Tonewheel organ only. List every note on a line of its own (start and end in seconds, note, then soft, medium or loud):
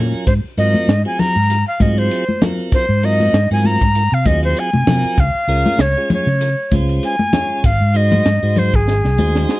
0.00 0.27 F#3 medium
0.00 0.27 C#4 medium
0.00 0.27 F4 medium
0.00 0.27 A#4 medium
0.00 0.25 G#5 medium
0.58 0.90 F#3 medium
0.58 0.90 C4 medium
0.58 0.90 F4 medium
0.58 0.90 A#4 medium
1.05 1.37 F#3 medium
1.05 1.37 C4 medium
1.05 1.37 F4 medium
1.05 1.37 G#4 medium
1.50 1.58 F4 soft
1.50 1.58 G#4 soft
1.80 2.25 F#3 medium
1.80 2.24 C4 medium
1.80 2.24 F4 medium
1.80 2.25 G#4 medium
2.41 2.86 F#3 medium
2.41 2.86 C4 medium
2.41 2.86 F4 medium
2.41 2.86 A#4 medium
3.03 3.35 F#3 medium
3.03 3.35 C4 medium
3.03 3.36 F4 medium
3.03 3.36 A#4 medium
3.51 3.83 F#3 medium
3.51 3.83 C4 medium
3.51 3.83 F4 medium
3.51 3.83 A#4 medium
3.96 4.04 F4 soft
3.96 4.04 A#4 soft
4.26 4.70 F#3 medium
4.26 4.71 C4 medium
4.26 4.71 F4 medium
4.26 4.70 G#4 medium
4.87 5.18 F#3 medium
4.87 5.18 C4 medium
4.87 5.18 F4 medium
4.87 5.18 A#4 medium
5.48 5.81 G#3 medium
5.48 5.81 C#4 medium
5.48 5.81 F4 medium
5.48 5.81 A#4 medium
5.97 6.29 G#3 medium
5.97 6.29 C#4 medium
5.97 6.29 F4 medium
5.97 6.29 G#4 medium
6.41 6.49 F4 soft
6.41 6.49 A#4 soft
6.72 7.16 G#3 medium
6.72 7.16 C#4 medium
6.72 7.16 F4 medium
6.72 7.16 C5 medium
7.33 7.64 G#3 medium
7.33 7.64 C#4 medium
7.33 7.64 F4 medium
7.33 7.64 C#5 medium
7.94 8.27 G#3 medium
7.94 8.27 D#4 medium
7.94 8.27 F#4 medium
7.94 8.27 C5 medium
8.43 8.75 G#3 medium
8.43 8.75 D#4 medium
8.43 8.75 F#4 medium
8.43 8.75 C5 medium
8.87 8.95 F#4 soft
8.87 8.95 C5 soft
9.18 9.60 G#3 medium
9.18 9.60 D#4 medium
9.18 9.60 F#4 medium
9.18 9.60 C5 medium